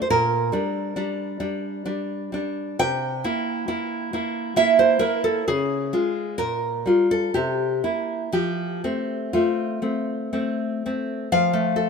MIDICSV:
0, 0, Header, 1, 2, 480
1, 0, Start_track
1, 0, Key_signature, -1, "major"
1, 0, Tempo, 883652
1, 34, Time_signature, 3, 2, 24, 8
1, 995, Tempo, 952381
1, 1475, Tempo, 894188
1, 2915, Tempo, 927357
1, 3395, Tempo, 933126
1, 3875, Tempo, 991736
1, 5795, Tempo, 884956
1, 6121, End_track
2, 0, Start_track
2, 0, Title_t, "Nylon-string guitar"
2, 0, Program_c, 0, 24
2, 9, Note_on_c, 0, 72, 70
2, 40, Note_off_c, 0, 72, 0
2, 56, Note_on_c, 0, 46, 74
2, 57, Note_on_c, 0, 70, 94
2, 274, Note_off_c, 0, 46, 0
2, 284, Note_on_c, 0, 55, 55
2, 289, Note_on_c, 0, 62, 63
2, 515, Note_off_c, 0, 62, 0
2, 518, Note_off_c, 0, 55, 0
2, 522, Note_on_c, 0, 62, 57
2, 525, Note_on_c, 0, 55, 55
2, 753, Note_off_c, 0, 62, 0
2, 754, Note_off_c, 0, 55, 0
2, 760, Note_on_c, 0, 55, 50
2, 761, Note_on_c, 0, 62, 55
2, 1001, Note_off_c, 0, 62, 0
2, 1003, Note_off_c, 0, 55, 0
2, 1007, Note_on_c, 0, 62, 63
2, 1009, Note_on_c, 0, 55, 54
2, 1236, Note_off_c, 0, 55, 0
2, 1242, Note_on_c, 0, 55, 52
2, 1244, Note_off_c, 0, 62, 0
2, 1250, Note_on_c, 0, 62, 61
2, 1458, Note_off_c, 0, 55, 0
2, 1462, Note_off_c, 0, 62, 0
2, 1465, Note_off_c, 0, 70, 0
2, 1479, Note_on_c, 0, 48, 76
2, 1481, Note_on_c, 0, 79, 115
2, 1712, Note_off_c, 0, 48, 0
2, 1722, Note_on_c, 0, 58, 59
2, 1723, Note_on_c, 0, 64, 62
2, 1949, Note_off_c, 0, 58, 0
2, 1949, Note_off_c, 0, 64, 0
2, 1955, Note_on_c, 0, 58, 49
2, 1956, Note_on_c, 0, 64, 61
2, 2192, Note_off_c, 0, 58, 0
2, 2196, Note_off_c, 0, 64, 0
2, 2198, Note_on_c, 0, 58, 58
2, 2203, Note_on_c, 0, 64, 55
2, 2414, Note_off_c, 0, 79, 0
2, 2424, Note_off_c, 0, 58, 0
2, 2425, Note_off_c, 0, 64, 0
2, 2429, Note_on_c, 0, 58, 60
2, 2433, Note_on_c, 0, 64, 61
2, 2434, Note_on_c, 0, 76, 106
2, 2549, Note_off_c, 0, 76, 0
2, 2551, Note_on_c, 0, 72, 86
2, 2659, Note_off_c, 0, 58, 0
2, 2661, Note_on_c, 0, 70, 82
2, 2662, Note_off_c, 0, 64, 0
2, 2666, Note_on_c, 0, 58, 49
2, 2668, Note_on_c, 0, 64, 58
2, 2670, Note_off_c, 0, 72, 0
2, 2786, Note_off_c, 0, 70, 0
2, 2793, Note_on_c, 0, 69, 85
2, 2891, Note_off_c, 0, 58, 0
2, 2892, Note_off_c, 0, 64, 0
2, 2915, Note_off_c, 0, 69, 0
2, 2920, Note_on_c, 0, 68, 96
2, 2921, Note_on_c, 0, 49, 73
2, 3151, Note_off_c, 0, 49, 0
2, 3155, Note_on_c, 0, 56, 56
2, 3157, Note_on_c, 0, 65, 57
2, 3374, Note_off_c, 0, 56, 0
2, 3375, Note_off_c, 0, 65, 0
2, 3378, Note_off_c, 0, 68, 0
2, 3387, Note_on_c, 0, 70, 94
2, 3393, Note_on_c, 0, 46, 68
2, 3625, Note_off_c, 0, 46, 0
2, 3633, Note_on_c, 0, 55, 50
2, 3641, Note_on_c, 0, 65, 57
2, 3735, Note_off_c, 0, 70, 0
2, 3764, Note_on_c, 0, 69, 85
2, 3854, Note_off_c, 0, 55, 0
2, 3858, Note_off_c, 0, 65, 0
2, 3880, Note_off_c, 0, 69, 0
2, 3882, Note_on_c, 0, 67, 89
2, 3887, Note_on_c, 0, 48, 63
2, 4109, Note_off_c, 0, 48, 0
2, 4122, Note_on_c, 0, 58, 48
2, 4123, Note_on_c, 0, 64, 52
2, 4337, Note_off_c, 0, 67, 0
2, 4339, Note_off_c, 0, 58, 0
2, 4339, Note_off_c, 0, 64, 0
2, 4358, Note_on_c, 0, 53, 73
2, 4361, Note_on_c, 0, 67, 84
2, 4592, Note_off_c, 0, 53, 0
2, 4607, Note_on_c, 0, 57, 50
2, 4608, Note_on_c, 0, 60, 60
2, 4821, Note_off_c, 0, 67, 0
2, 4844, Note_off_c, 0, 60, 0
2, 4845, Note_off_c, 0, 57, 0
2, 4845, Note_on_c, 0, 65, 58
2, 4851, Note_on_c, 0, 57, 51
2, 4851, Note_on_c, 0, 60, 51
2, 5075, Note_off_c, 0, 57, 0
2, 5077, Note_off_c, 0, 60, 0
2, 5081, Note_on_c, 0, 57, 46
2, 5083, Note_on_c, 0, 60, 52
2, 5302, Note_off_c, 0, 65, 0
2, 5321, Note_off_c, 0, 57, 0
2, 5321, Note_off_c, 0, 60, 0
2, 5327, Note_on_c, 0, 57, 50
2, 5329, Note_on_c, 0, 60, 49
2, 5578, Note_off_c, 0, 57, 0
2, 5578, Note_off_c, 0, 60, 0
2, 5583, Note_on_c, 0, 57, 48
2, 5585, Note_on_c, 0, 60, 50
2, 5787, Note_off_c, 0, 57, 0
2, 5787, Note_off_c, 0, 60, 0
2, 5809, Note_on_c, 0, 53, 81
2, 5810, Note_on_c, 0, 77, 108
2, 5925, Note_on_c, 0, 57, 65
2, 6048, Note_on_c, 0, 69, 62
2, 6121, Note_off_c, 0, 53, 0
2, 6121, Note_off_c, 0, 57, 0
2, 6121, Note_off_c, 0, 69, 0
2, 6121, Note_off_c, 0, 77, 0
2, 6121, End_track
0, 0, End_of_file